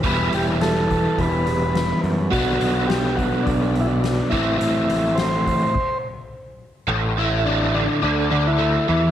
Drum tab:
CC |--------|--------|----x---|--------|
HH |oooooooo|oooooooo|oooo----|--------|
SD |--o---o-|--o---o-|--o-----|--------|
BD |o--oo---|o--oo--o|---oo---|--------|